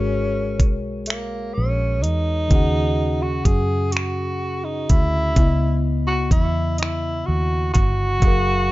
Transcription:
Already playing: G#1 G#3 C#4 F#4 G#4 A#4 C#5
0.60 B1, kick, closed hi-hat
1.06 A#3, closed hi-hat
1.10 finger snap
1.54 A#1 C#4
2.02 E2 D#4, closed hi-hat
2.48 D#2 C#3 C#4, kick, closed hi-hat
2.52 F#4 G#4 F#5
3.22 F#4
3.45 F#2 G#4, kick, closed hi-hat
3.92 F#4, closed hi-hat
3.97 finger snap
4.65 D#4
4.89 D2 E4, kick, closed hi-hat
5.34 C#2 C#3 B3, kick, closed hi-hat
5.39 E4 D#5
6.07 F#4
6.31 E2 E4, kick, closed hi-hat
6.78 E4, closed hi-hat
6.83 finger snap
7.26 D#2 F#4
7.74 G1 F#4, kick, closed hi-hat
8.19 F#1 F#3 F5, kick, closed hi-hat
8.25 G#4 A#4

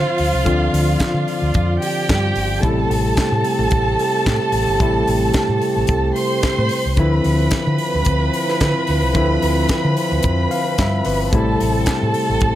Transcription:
Already playing: D3 F3 C4 F4 C5 F5
0.18 D2, open hi-hat
0.34 C2
0.45 D2 D3 F3 C4 F4 D5, kick, closed hi-hat
0.73 D2, open hi-hat
1.00 kick, snare, clap, closed hi-hat
1.14 D3
1.28 open hi-hat
1.42 D2
1.54 F2, kick, closed hi-hat
1.81 G4 G5, open hi-hat
2.09 G2, kick, snare, clap, closed hi-hat
2.35 G1, open hi-hat
2.61 A1 C3 G3 A3 C4 E4 G4 A4 A5, kick, closed hi-hat
2.90 A1, open hi-hat
3.17 kick, snare, clap, closed hi-hat
3.32 A2
3.44 open hi-hat
3.59 A1
3.71 A1, kick, closed hi-hat
3.99 open hi-hat
4.26 A2, kick, snare, clap, closed hi-hat
4.52 A1, open hi-hat
4.67 G1
4.79 A1 C3 G3 A3 E4, kick, closed hi-hat
5.07 A1, open hi-hat
5.34 muted fingered electric bass stroke, kick, snare, clap, closed hi-hat
5.49 A2
5.61 open hi-hat
5.76 A1
5.87 C2, kick, closed hi-hat
6.15 C5 C6, open hi-hat
6.43 kick, snare, clap, closed hi-hat
6.58 A2
6.69 open hi-hat
6.85 C2
6.96 D2 D3 F3 C4 E4 B4 B5, kick, closed hi-hat
7.24 D2, open hi-hat
7.51 kick, snare, clap, closed hi-hat
7.67 D3
7.78 open hi-hat
7.94 D2
8.05 D2, kick, closed hi-hat
8.33 open hi-hat
8.48 snare
8.61 D3, kick, snare, clap, closed hi-hat
8.87 D2, open hi-hat
9.02 C2
9.13 D2 D3 F3 C4 E4, kick, closed hi-hat
9.42 D2, open hi-hat
9.69 kick, snare, clap, closed hi-hat
9.85 D3
9.97 open hi-hat
10.12 D2
10.23 F2, kick, closed hi-hat
10.51 F5, open hi-hat
10.78 G2 E5, kick, snare, clap, closed hi-hat
11.05 G1 B4, open hi-hat
11.32 A1 C3 G3 A3 E4 G4 A4 A5, kick, closed hi-hat
11.60 A1, open hi-hat
11.86 kick, snare, clap, closed hi-hat
12.03 A2
12.14 open hi-hat
12.30 A1
12.41 A1, kick, closed hi-hat

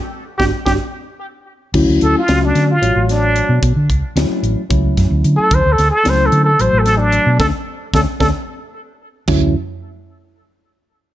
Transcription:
0.38 G1 D4 F#4 G4, kick, snare
0.66 G1 D4 F#4 G4, kick, snare
1.74 D2 F#3 A3 C#4 E4, kick, crash
1.88 D2
2.01 D2 A4, closed hi-hat
2.18 F4
2.28 C#2 F#3 A3 C#4 F#4, snare, closed hi-hat
2.45 D4
2.55 D3, snare, closed hi-hat
2.71 F4
2.82 A1 F#3 A3 F#4 C#5, closed hi-hat
2.96 A1
3.09 D4, snare, closed hi-hat
3.36 closed hi-hat
3.49 B2
3.63 B2, kick, closed hi-hat
3.76 D3
3.89 C#2, kick, closed hi-hat
4.03 muted fingered electric bass stroke
4.16 D2 F#3 A3 C#4 E4, snare, closed hi-hat
4.43 A1, closed hi-hat
4.57 muted fingered electric bass stroke
4.69 C#2 F#3 A3 C#4 E4, kick, closed hi-hat
4.97 F#2, kick, snare, closed hi-hat
5.10 D2
5.24 D3, closed hi-hat
5.37 A4, muted fingered electric bass stroke
5.51 D2 C5, kick, closed hi-hat
5.66 D2
5.72 A4
5.78 D2, snare, closed hi-hat
5.91 A4
6.04 C#2 F#3 A3 C#4 E4, snare, closed hi-hat
6.09 C5
6.26 A4
6.32 D3, closed hi-hat
6.44 A4
6.59 A1 F#3 A3 F#4 C5 C#5, closed hi-hat
6.73 A1
6.79 A4
6.86 snare, closed hi-hat
6.98 D4
7.12 closed hi-hat
7.26 B2
7.39 D2 A3 C#4 D4 A4, kick, snare
7.93 D2 A3 C#4 D4 A4, kick, snare
8.20 D2 A3 C#4 D4 A4, kick, snare
9.28 D2 F#3 A3 C#4 E4, kick, floor tom, china

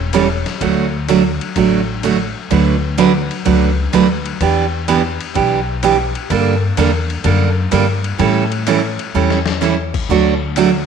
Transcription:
Already playing: E1
0.13 E3 G3 C#4 E4 A4, hi-hat pedal, ride
0.46 snare, ride
0.61 D2 D3 F#3 A3 D4 F#4, kick, ride
1.09 D3 F#3 A3 D4 F#4, hi-hat pedal, ride
1.41 ride
1.56 A1 D3 F#3 A3 D4 F#4, kick, ride
2.03 D3 F#3 A3 D4 F#4, hi-hat pedal, ride
2.50 D2 D3 F#3 A3 D4 F#4 B4, kick, ride
2.98 D3 F#3 A3 D4 F#4 B4, hi-hat pedal, ride
3.31 ride
3.45 C#2 D3 F#3 A3 D4 F#4 B4, kick, ride
3.93 D2 D3 F#3 A3 D4 F#4 B4, hi-hat pedal, ride
4.26 ride
4.41 E2 E3 B3 D4 G4, kick, ride
4.88 E3 B3 D4 G4, hi-hat pedal, ride
5.21 ride
5.34 B1 E3 B3 D4 G4, kick, ride
5.83 E3 B3 D4 G4, hi-hat pedal, ride
6.15 ride
6.30 G2 D3 G3 A#3 D4 A4, kick, ride
6.77 E2 D3 G3 A#3 D4 A4, hi-hat pedal, ride
7.10 ride
7.24 F#2 D3 G3 A#3 D4 A4, kick, ride
7.71 G2 D3 G3 A#3 D4 A4, hi-hat pedal, ride
8.04 ride
8.18 A2 E3 G3 C#4 E4 A4, kick, ride
8.52 ride
8.67 E3 G3 C#4 E4 A4, hi-hat pedal, ride
8.99 ride
9.14 E2 E3 G3 C#4 E4 A4
9.30 snare
9.46 snare
9.61 E3 G3 C#4 E4 A4, snare, hi-hat pedal
9.94 kick, crash
10.09 D2 D3 F#3 A3 D4 F#4, kick
10.56 D3 F#3 A3 D4 F#4, hi-hat pedal, ride

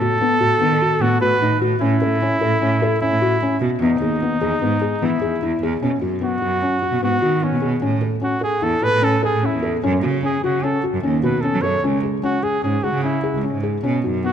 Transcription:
Already playing: A4
0.00 A2 F#4
0.21 B3
0.41 A2 F#4
0.60 D#3 B3
0.82 F#4
1.00 A2 B3 F#4
1.21 A2 F#4 B4
1.41 A2 D#4
1.61 A2 F#4
1.81 A2 C#4 E4
1.94 C#4
2.01 A2 A4
2.22 C#4
2.41 A2 A4
2.61 A2 C#4
2.82 A4
3.01 C#4 E4
3.11 A2
3.22 F#4
3.42 C#4
3.61 B2 F#4
3.81 E2 B3 D#4
4.01 D#2 G#4
4.22 B3
4.41 E2 G#4
4.62 G#2 B3
4.82 G#4
5.02 E3 B3 E4
5.22 E2 G#4
5.42 E2 E4
5.62 E2 G#4
5.82 B2 C#4
6.02 F#2 F#4
6.21 B3 F#4
6.42 F#2 F#4
6.62 C#4
6.82 F#4
6.91 B2
7.02 G#2 B3 F#4
7.22 D#3 F#4
7.42 B3 C#4
7.53 B2
7.62 B2 G#4
7.82 A2 C#4
8.01 A4
8.21 C#4 F#4
8.41 G#4 A4
8.62 E2 E4 A4
8.82 A2 A4 B4
8.94 A2
9.02 C#4 A4
9.23 G#4 A4
9.34 A2
9.43 C#4 E4
9.54 E2
9.63 A4
9.83 F#2 C#4
10.03 C#3 F#4
10.23 C#4 G#4
10.44 C#3 F#4
10.63 C#4 A4
10.84 F#4
10.94 F#2
11.03 D#2 C#4
11.23 B2 F#4 B4
11.41 C#4 A4
11.54 F#3
11.61 F#2 A4 C#5
11.84 C#2 C#4
12.03 G#4
12.23 C#4 F#4
12.43 G#4
12.63 G#2 C#4 G#4
12.83 C#2 F#4 G#4
12.94 C#3
13.03 C#4 E4
13.24 G#4
13.34 C#2
13.43 C#4
13.54 G#2
13.63 G#4
13.83 B2 C#4
14.04 F#2 D#4 F#4
14.24 B3 F#4

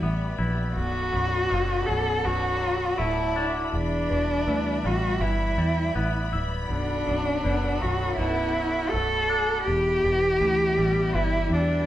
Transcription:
Already playing: E3 G3 G4 D5 E5 B5
0.02 A1 B3
0.39 A#1 E4
0.74 B0 B1 F#4 A4 F#5
1.13 B0 F#2
1.49 F#1 B2
1.86 B0 F#3 A4
2.24 B0 B2 F#4
2.61 F#3
2.98 D1 A3 E4
3.36 D4
3.72 E1 E2 G3 D4 E5
4.10 E1 B2
4.47 D2 E3
4.84 A1 G3 F#4
5.20 G1 E3 E4
5.57 E2 G3
5.95 A1 B3
6.33 D1 E4
6.69 B0 B1 D4 A4 F#5
7.06 B0 F#2
7.44 F#1 B2
7.80 B0 F#3 F#4
8.16 B0 B2 E4
8.56 F#3
8.90 A3 A4
8.94 B0
9.29 D4
9.63 E2 G4 E5
9.67 E1
10.04 E1 B2
10.41 D2 E3
10.78 A1 G3
11.14 G1 E3 E4
11.50 E2 G3 D4

